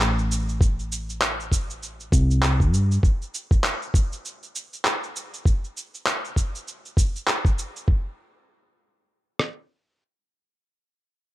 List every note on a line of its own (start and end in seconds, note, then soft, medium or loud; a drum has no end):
0.00 2.07 A1 medium
0.00 clap medium
0.00 shaker soft
0.19 shaker soft
0.31 shaker medium
0.49 shaker soft
0.61 kick loud
0.61 shaker soft
0.79 shaker soft
0.92 shaker medium
1.10 shaker soft
1.21 clap loud
1.21 shaker soft
1.40 shaker soft
1.52 kick medium
1.52 shaker medium
1.70 shaker soft
1.83 shaker soft
2.00 shaker soft
2.12 2.73 C2 medium
2.12 kick medium
2.12 shaker medium
2.31 shaker soft
2.42 clap medium
2.42 shaker soft
2.60 kick medium
2.60 shaker soft
2.73 2.97 G2 medium
2.73 shaker medium
2.91 shaker soft
3.03 kick loud
3.03 shaker soft
3.22 shaker soft
3.34 shaker medium
3.51 kick loud
3.51 shaker soft
3.64 clap medium
3.64 shaker soft
3.82 shaker soft
3.94 kick loud
3.94 shaker medium
4.13 shaker soft
4.25 shaker soft
4.43 shaker soft
4.55 shaker medium
4.73 shaker soft
4.85 clap medium
4.85 shaker soft
5.03 shaker soft
5.16 shaker medium
5.34 shaker soft
5.45 kick loud
5.45 shaker soft
5.64 shaker soft
5.77 shaker medium
5.94 shaker soft
6.06 clap medium
6.06 shaker soft
6.25 shaker soft
6.36 kick medium
6.36 shaker medium
6.55 shaker soft
6.68 shaker soft
6.85 shaker soft
6.97 kick medium
6.97 shaker medium
7.16 shaker soft
7.27 clap medium
7.27 shaker soft
7.45 kick medium
7.45 shaker soft
7.58 shaker medium
7.76 shaker soft
7.88 kick loud
9.39 cross-stick medium